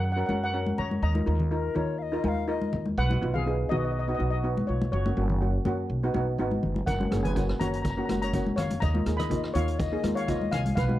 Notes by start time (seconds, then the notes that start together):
Already playing: F#2
0.04 F#5
0.12 F#5
0.16 C#4 F#4 A#4 F#5
0.26 F#2 C#4 F#4 A#4 F#5, high conga
0.44 A#4 F#5
0.54 C#4 F#4 A#4
0.66 high conga
0.78 F#2 C#5 A#5, low conga
0.91 high conga
1.02 D#2 D#5 A#5
1.15 D#4 F4 A#4, high conga
1.26 D#2 D#4 F4 A#4
1.40 low conga
1.51 D#4 F4 A#4
1.75 D#2 D#4 F4 A#4 C#5, low conga
1.99 D#5 F5
2.12 D#4 F4 A#4
2.24 D#2 D#4 F4 A#4 G#5, high conga
2.28 F5
2.48 D#4 F4 A#4 D#5
2.62 high conga
2.73 D#2, low conga
2.86 high conga
2.98 B1 B4 F#5
3.09 B3 D#4 F#4, high conga
3.21 B1 B3 D#4 F4
3.34 G#4 F5, low conga
3.46 B3 D#4 G#4
3.69 B1 B3 D#4 F#4 D#5, low conga
3.77 D#5
3.85 D#5
3.92 D#5
3.99 D#5
4.08 B3 D#4 F#4 D#5
4.15 B3 D#5
4.19 B1 D#4 F#4
4.30 F#4 D#5
4.44 B3 D#4 F#4
4.57 high conga
4.67 B1 F4 C#5
4.82 high conga
4.92 F#1 F#4 C#5
5.06 A#3 C#4 F#4, high conga
5.17 F#1 A#3 C#4 F#4
5.30 low conga
5.41 A#3 C#4 F#4
5.65 F#2 A#3 C#4 F#4, high conga, low conga
5.90 B1
6.03 B3 D#4 F#4
6.14 B1 B3 D#4 F#4, high conga
6.38 G#1 B3 D#4 F#4
6.51 high conga
6.63 F#1, low conga
6.76 high conga
6.86 F#1 A#4 F#5, kick, closed hi-hat
7.00 A#3 C#4 F#4, high conga
7.11 F#1 A#3 C#4 G#4, cross-stick, closed hi-hat
7.23 B4 G#5, closed hi-hat, low conga
7.35 A#3 C#4 F#4, kick, closed hi-hat
7.49 cross-stick
7.60 F#1 A#3 C#4 F#4 C#5 A#5, closed hi-hat, low conga
7.68 A#5
7.73 A#5, closed hi-hat
7.82 A#5, kick, closed hi-hat
7.90 A#5
7.97 A#3 C#4 F#4 A#5
8.05 F#1 A#3 A#5, cross-stick, closed hi-hat, high conga
8.10 C#4 F#4
8.22 C#5 A#5, closed hi-hat
8.33 A#3 C#4 F#4, kick, closed hi-hat
8.46 high conga
8.56 F#1 C#5 F5, cross-stick, closed hi-hat, low conga
8.70 closed hi-hat, high conga
8.80 D#2 D#5 A#5, kick, closed hi-hat
8.94 A#3 D#4 F4, high conga
9.06 D#2 A#3 D#4 G#4, cross-stick, closed hi-hat
9.17 D#5 B5, cross-stick, closed hi-hat, low conga
9.30 A#3 D#4 F4 D#5, kick, closed hi-hat
9.44 cross-stick
9.54 D#2 A#3 D#4 F4 C#5 F5, closed hi-hat, low conga
9.68 closed hi-hat
9.79 D#5, kick, closed hi-hat
9.92 A#3 D#4 G#4
10.03 D#2 A#3 D#4 F4, cross-stick, closed hi-hat, high conga
10.15 C#5 F5, closed hi-hat
10.26 A#3 D#4 F4 D#5 F5, kick, closed hi-hat
10.42 high conga
10.51 C2 F5 G#5, cross-stick, closed hi-hat, low conga
10.66 closed hi-hat, high conga
10.75 B1 B4 F5, kick, closed hi-hat
10.88 B3 D#4 F#4, high conga